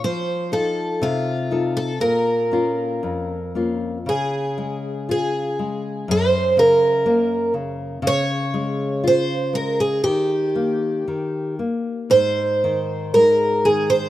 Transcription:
<<
  \new Staff \with { instrumentName = "Twelve-string acoustic guitar" } { \time 2/4 \key bes \minor \tempo 4 = 60 c''8 a'8 f'8. a'16 | bes'4. r8 | \key des \major aes'4 aes'4 | c''8 bes'4 r8 |
des''4 c''8 bes'16 aes'16 | g'4. r8 | c''4 bes'8 aes'16 c''16 | }
  \new Staff \with { instrumentName = "Nylon-string guitar" } { \clef bass \time 2/4 \key bes \minor f8 <ees' f' a'>8 c8 <ees' f' a'>8 | bes,8 <bes des' f'>8 f,8 <bes des' f'>8 | \key des \major des8 aes8 f'8 aes8 | ges,8 des8 bes8 des8 |
des8 aes8 f'8 aes8 | ees8 bes8 ees8 bes8 | aes,8 ees8 aes8 ees8 | }
>>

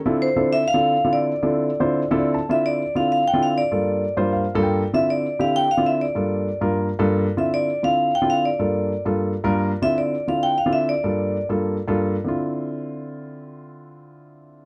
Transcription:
<<
  \new Staff \with { instrumentName = "Vibraphone" } { \time 4/4 \key d \minor \tempo 4 = 196 r8 c''4 e''8 f''4. d''8~ | d''2. r4 | e''8 d''4 f''8 f''8 g''8 f''8 d''8~ | d''4. r2 r8 |
e''8 d''4 f''8 g''8 f''8 e''8 d''8~ | d''4. r2 r8 | e''8 d''4 f''4 g''8 f''8 d''8~ | d''4. r2 r8 |
e''8 d''4 f''8 g''8 f''8 e''8 d''8~ | d''4. r2 r8 | r1 | r1 | }
  \new Staff \with { instrumentName = "Grand piano" } { \time 4/4 \key d \minor << { r1 | r2. d''8 a''8 | r1 | r4. d''8 f''4 g''4 |
r1 | r1 | r1 | r1 |
r1 | r1 | r1 | r1 | } \\ { <d c' e' f' a'>8. r16 <d c' e' f' a'>4 r16 <d c' e' f' a'>8. r16 <d c' e' f' a'>8. | r8 <d c' e' f' a'>4 r16 <d c' e' f' c''>8. r16 <d c' e' f' a'>8. r8 | <d c' e' f'>4 r8 <d c' e' f'>4 r16 <d c' e' f'>8. r8 | <g, bes f' a'>4 r8 <g, bes f' c''>4 r16 <g, bes f' a'>8. r8 |
<d c' e' f'>4 r8 <d c' e' g'>4 r16 <d c' e' f'>8. r8 | <g, bes f' a'>4 r8 <g, bes f' bes'>4 r16 <g, bes f' a'>8. r8 | <d c' e' f'>4 r8 <d c' e' f'>4 r16 <d c' e' f'>8. r8 | <g, bes f' a'>4 r8 <g, bes f' a'>4 r16 <g, bes f' bes'>8. r8 |
<d c' e' f'>4 r8 <d c' e' f'>4 r16 <d c' e' f'>8. r8 | <g, bes f' a'>4 r8 <g, bes f' a'>4 r16 <g, bes f' a'>8. r8 | <d c' e' f'>1~ | <d c' e' f'>1 | } >> }
>>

